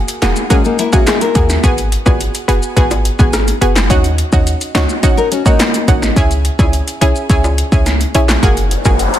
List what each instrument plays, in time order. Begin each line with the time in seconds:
Already playing: synth pluck A#3 F#4 G#4
0.08 closed hi-hat, maracas
0.22 808-style bass E1, synth pluck A#3 F#4 G#4, snare, clap, closed hi-hat, maracas
0.36 maracas
0.50 nylon-string guitar G#3 C#4, synth pluck A#3 F#4 G#4, kick, closed hi-hat, maracas
0.65 nylon-string guitar A#3 D#4, maracas
0.79 nylon-string guitar A#3 E4, closed hi-hat, maracas
0.93 synth pluck A#3 F#4 G#4, nylon-string guitar C#4 F#4, kick, maracas
1.07 nylon-string guitar D#4 G#4, snare, clap, closed hi-hat, maracas
1.21 nylon-string guitar E4 A#4, closed hi-hat, maracas
1.35 808-style bass D#2, synth pluck A#3 F#4 G#4, kick, closed hi-hat, maracas
1.50 snare, maracas
1.63 808-style bass G#1, synth pluck B3 F#4 G#4, kick, closed hi-hat, maracas
1.78 closed hi-hat, maracas
1.92 closed hi-hat
2.06 808-style bass G#1, synth pluck B3 F#4 G#4, kick, high timbale, maracas
2.20 closed hi-hat, maracas
2.35 closed hi-hat, maracas
2.48 808-style bass F#1, synth pluck B3 F#4 G#4, closed hi-hat, maracas
2.63 maracas
2.77 808-style bass G#1, synth pluck B3 F#4 G#4, kick, closed hi-hat, maracas
2.91 closed hi-hat, high timbale, maracas
3.05 closed hi-hat, maracas
3.19 808-style bass G#1, synth pluck B3 F#4 G#4, kick, maracas
3.33 cross-stick, snare, closed hi-hat, maracas
3.48 closed hi-hat, maracas
3.61 808-style bass F#1, synth pluck B3 F#4 G#4, closed hi-hat, maracas
3.76 snare, clap, maracas
3.90 808-style bass D#2, synth pluck C#4 D#4 F#4, kick, closed hi-hat, maracas
4.04 closed hi-hat, maracas
4.18 closed hi-hat
4.32 808-style bass D#2, synth pluck C#4 D#4 F#4, kick, maracas
4.47 closed hi-hat, maracas
4.61 closed hi-hat, maracas
4.75 808-style bass C#2, synth pluck C#4 D#4 F#4, snare, clap, closed hi-hat, maracas
4.89 maracas
5.03 synth pluck C#4 D#4 F#4, kick, closed hi-hat, maracas
5.17 nylon-string guitar D#4 A#4, maracas
5.32 nylon-string guitar C#4 F#4, closed hi-hat, maracas
5.46 nylon-string guitar A#3 D#4, synth pluck C#4 D#4 F#4, kick, maracas
5.60 snare, clap, closed hi-hat, maracas
5.74 closed hi-hat, maracas
5.88 808-style bass G#1, synth pluck C#4 D#4 F#4, kick, closed hi-hat, maracas
6.02 snare, maracas
6.16 808-style bass C#2, synth pluck C#4 E4 G#4, kick, closed hi-hat, maracas
6.31 closed hi-hat, maracas
6.45 closed hi-hat
6.59 808-style bass C#2, synth pluck C#4 E4 G#4, kick, high timbale, maracas
6.73 closed hi-hat, maracas
6.88 closed hi-hat, maracas
7.01 808-style bass B1, synth pluck C#4 E4 G#4, closed hi-hat, maracas
7.16 maracas
7.30 808-style bass C#2, synth pluck C#4 E4 G#4, kick, closed hi-hat, maracas
7.44 high timbale, maracas
7.58 closed hi-hat, maracas
7.72 808-style bass C#2, synth pluck C#4 E4 G#4, kick, maracas
7.86 snare, closed hi-hat, maracas
8.01 closed hi-hat, maracas
8.15 808-style bass A#1, synth pluck C#4 E4 G#4, closed hi-hat, maracas
8.29 snare, clap, maracas
8.43 808-style bass F#1, synth pluck A#3 F#4 G#4, kick, closed hi-hat, riser, maracas
8.57 closed hi-hat, maracas
8.71 closed hi-hat
8.85 808-style bass F#1, synth pluck A#3 F#4 G#4, kick, maracas
8.99 closed hi-hat, maracas
9.14 closed hi-hat, maracas